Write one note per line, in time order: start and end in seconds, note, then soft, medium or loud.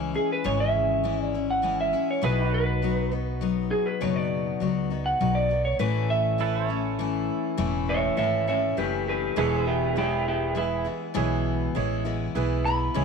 0.00 0.14 C#2 medium
0.00 0.15 E3 medium
0.00 0.15 G#3 medium
0.00 0.14 C#4 medium
0.00 0.13 E4 medium
0.00 2.19 E4 medium
0.00 2.20 G#4 medium
0.00 2.21 C#5 medium
0.14 0.44 G#3 soft
0.14 0.44 C#4 soft
0.14 0.44 E4 soft
0.14 0.30 G#4 medium
0.32 0.46 B4 medium
0.44 1.93 G#1 medium
0.44 1.04 C#3 medium
0.44 1.02 E3 medium
0.44 1.03 G#3 medium
0.44 1.04 C#4 medium
0.44 1.04 E4 medium
0.44 0.60 C#5 medium
0.60 1.23 E5 medium
1.04 1.34 E3 medium
1.04 1.34 G#3 medium
1.04 1.34 C#4 medium
1.04 1.33 E4 medium
1.23 1.47 D5 medium
1.34 1.62 G#3 soft
1.34 1.62 C#4 soft
1.34 1.63 E4 soft
1.51 1.79 F#5 medium
1.62 1.93 E3 medium
1.62 1.93 G#3 medium
1.62 1.93 C#4 medium
1.62 1.92 E4 medium
1.81 2.09 E5 medium
1.93 2.22 G#3 soft
1.93 2.23 C#4 soft
1.93 2.22 E4 soft
2.11 2.24 C#5 medium
2.22 3.71 B1 medium
2.22 2.82 B2 medium
2.22 2.81 F#3 medium
2.22 2.82 B3 medium
2.22 2.83 D#4 medium
2.22 2.44 E4 medium
2.22 2.83 F#4 medium
2.22 2.49 G#4 medium
2.22 2.53 B4 medium
2.26 5.78 B4 medium
2.44 5.77 D#4 medium
2.49 5.77 F#4 medium
2.54 3.12 B4 medium
2.82 3.12 F#3 medium
2.82 3.12 B3 medium
2.82 3.11 D#4 medium
2.82 3.10 F#4 medium
3.11 3.41 B3 soft
3.11 3.41 D#4 soft
3.11 3.42 F#4 soft
3.41 4.00 F#3 medium
3.41 4.00 B3 medium
3.41 4.00 D#4 medium
3.41 4.01 F#4 medium
3.71 3.86 G#4 loud
3.86 4.02 B4 medium
4.01 4.51 F#1 medium
4.01 4.61 B2 medium
4.01 4.59 F#3 medium
4.01 4.60 B3 medium
4.01 4.60 D#4 medium
4.01 4.62 F#4 medium
4.01 4.16 C#5 medium
4.16 5.03 D5 loud
4.60 5.12 C#2 medium
4.60 4.91 F#3 medium
4.60 4.91 B3 medium
4.60 4.90 D#4 medium
4.60 4.89 F#4 medium
4.90 5.19 B3 soft
4.90 5.20 D#4 soft
4.90 5.21 F#4 soft
5.06 5.35 F#5 medium
5.20 5.71 B1 medium
5.20 5.51 F#3 medium
5.20 5.50 B3 medium
5.20 5.49 D#4 medium
5.20 5.48 F#4 medium
5.35 5.64 D5 medium
5.49 5.79 B3 soft
5.49 5.80 D#4 soft
5.49 5.80 F#4 soft
5.65 5.79 C#5 medium
5.79 7.28 A1 medium
5.79 6.40 A2 medium
5.79 6.38 E3 medium
5.79 6.38 A3 medium
5.79 6.39 C#4 medium
5.79 6.40 E4 medium
5.79 6.09 B4 medium
6.10 6.68 E5 medium
6.38 6.69 E3 medium
6.38 6.69 A3 medium
6.38 6.69 C#4 medium
6.38 6.67 E4 medium
6.38 9.35 E4 medium
6.38 9.36 A4 medium
6.43 6.68 B4 medium
6.68 6.98 A3 soft
6.68 6.99 C#4 soft
6.68 6.99 E4 soft
6.68 9.36 C#5 medium
6.99 7.57 E3 medium
6.99 7.57 A3 medium
6.99 7.57 C#4 medium
6.99 7.59 E4 medium
7.57 8.08 E1 medium
7.57 8.18 A2 medium
7.57 8.16 E3 medium
7.57 8.16 A3 medium
7.57 8.17 C#4 medium
7.57 8.18 E4 medium
7.89 8.16 C#5 medium
7.89 8.17 E5 medium
8.17 8.69 G#1 medium
8.17 8.48 E3 medium
8.17 8.48 A3 medium
8.17 8.47 C#4 medium
8.17 8.46 E4 medium
8.17 8.46 C#5 medium
8.17 8.47 E5 loud
8.47 8.76 A3 soft
8.47 8.77 C#4 soft
8.47 8.77 E4 medium
8.47 8.76 C#5 medium
8.47 8.78 E5 medium
8.77 9.29 F#1 medium
8.77 9.36 E3 medium
8.77 9.36 A3 medium
8.77 9.36 C#4 medium
8.77 9.37 E4 medium
8.77 9.06 G4 medium
8.77 9.07 B4 medium
9.08 9.36 G4 medium
9.08 9.37 B4 medium
9.36 10.85 E1 medium
9.36 9.97 E2 medium
9.36 9.97 B2 medium
9.36 9.96 E3 medium
9.36 9.96 G#3 medium
9.36 9.96 B3 medium
9.36 9.98 E4 medium
9.36 9.86 E4 medium
9.36 12.92 E4 medium
9.36 9.65 G#4 medium
9.36 9.86 G#4 medium
9.36 9.59 A4 medium
9.36 9.67 B4 medium
9.36 9.87 B4 medium
9.41 9.66 C#5 medium
9.59 12.93 G#4 medium
9.66 9.95 E4 medium
9.66 9.97 G4 medium
9.66 12.93 B4 medium
9.96 10.54 E3 medium
9.96 10.55 G#3 medium
9.96 10.55 B3 medium
9.96 10.46 E4 medium
9.96 10.56 E4 medium
9.96 10.25 E4 medium
9.96 10.27 G4 medium
9.96 10.46 G#4 medium
9.96 10.47 C#5 medium
10.28 10.55 E4 medium
10.28 10.57 G4 medium
10.55 10.85 E3 medium
10.55 10.85 G#3 medium
10.55 10.84 B3 medium
10.55 11.05 E4 medium
10.55 10.83 E4 medium
10.55 10.86 E4 medium
10.55 11.06 G#4 medium
10.55 11.06 B4 medium
10.85 11.13 E3 soft
10.85 11.14 G#3 soft
10.85 11.14 B3 soft
10.85 11.14 E4 soft
11.14 11.66 B1 medium
11.14 11.75 E2 medium
11.14 11.75 B2 medium
11.14 11.74 E3 medium
11.14 11.75 G#3 medium
11.14 11.75 B3 medium
11.14 11.64 E4 medium
11.14 11.76 E4 medium
11.14 11.65 G#4 medium
11.14 11.65 C#5 medium
11.75 12.27 A1 medium
11.75 12.05 E3 medium
11.75 12.05 G#3 medium
11.75 12.04 B3 medium
11.75 12.24 E4 medium
11.75 12.03 E4 medium
11.75 12.24 G#4 medium
11.75 12.25 C#5 medium
12.05 12.34 E3 soft
12.05 12.35 G#3 medium
12.05 12.35 B3 medium
12.05 12.35 E4 medium
12.35 12.86 B1 medium
12.35 12.65 E3 medium
12.35 12.65 G#3 medium
12.35 12.65 B3 medium
12.35 12.84 E4 medium
12.35 12.65 E4 medium
12.35 12.84 G#4 medium
12.35 12.85 B4 medium
12.65 12.93 E3 soft
12.65 12.94 G#3 soft
12.65 12.95 B3 soft
12.65 12.94 E4 soft
12.65 13.05 B5 loud
12.94 13.05 C#2 medium
12.94 13.05 C#3 medium
12.94 13.05 E3 medium
12.94 13.05 G#3 medium
12.94 13.05 C#4 medium
12.94 13.05 E4 medium
12.94 13.05 G#4 medium
12.94 13.05 C#5 medium